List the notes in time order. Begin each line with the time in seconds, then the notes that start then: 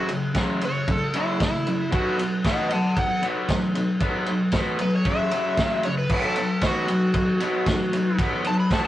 0.09 F#2 C#3, ride
0.34 F#2 C#3 F#3, kick, snare, ride
0.61 F#2 C#3 C#5, ride
0.88 F#2 C#3 A4, kick, ride
1.14 F#2 C#3 F#3 E4, ride
1.40 F#2 C#3, kick, snare, ride
1.44 E4
1.67 F#2 C#3, ride
1.91 B2 F#3 B3 F#4, kick, ride
2.19 B2 F#3, ride
2.44 B2 F#3 B3 D#5 F#5, kick, snare, ride
2.70 B2 F#3 F#5 A5, ride
2.96 B2 F#3 F#5, kick, ride
3.22 B2 F#3 B3, ride
3.49 B2 F#3, kick, snare, ride
3.75 B2 F#3, ride
4.00 B2 F#3 B3, kick, ride
4.26 B2 F#3, ride
4.52 B2 F#3 B3, kick, snare, ride
4.79 B2 F#3 B4, ride
4.95 C#5
5.05 F#2 C#3 F#3 E5, kick, ride
5.31 F#2 C#3 F#3, ride
5.57 F#2 C#3 F#3, kick, snare, ride
5.83 F#2 C#3 C#5, ride
5.98 B4
6.09 B2 F#3 B3, kick, crash
6.25 A4
6.36 B2 F#3, ride
6.61 B2 F#3 B3 F#4, kick, snare, ride
6.87 B2 F#3, ride
7.14 B2 F#3, kick, ride
7.40 B2 F#3 B3, ride
7.66 B2 F#3, kick, snare, ride
7.93 B2 F#3, ride
8.18 B2 F#3 B3, kick, ride
8.44 B2 F#3 A5, ride
8.60 B5
8.71 B2 F#3 B3 A5, kick, snare, ride